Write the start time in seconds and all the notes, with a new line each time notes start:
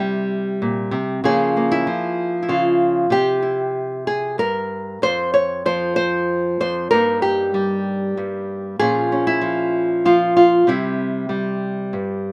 Already playing: C3 C4 E4 G4
0.00 G3
0.62 A#2
0.91 C3
1.24 C#3 F3 A#3 C#4 G#4
1.57 A#3
1.72 E4
1.87 F3
2.43 E4
2.49 C#3 F4
3.10 C3 G4
3.42 E4
4.07 G#4
4.38 G2 A#4
5.02 F2 C5
5.34 C#5
5.66 F3 C5
5.96 C5
6.60 F2 C5
6.91 G2 G3 A#3 D#4 A#4
7.22 G4
7.54 G3
8.17 G2
8.79 A#2 F3 C#4 G#4
9.12 C#4
9.27 E4
9.41 F3
10.05 F3 F4
10.37 F4
10.67 C3 G3 C4 E4
11.29 G3
11.93 G2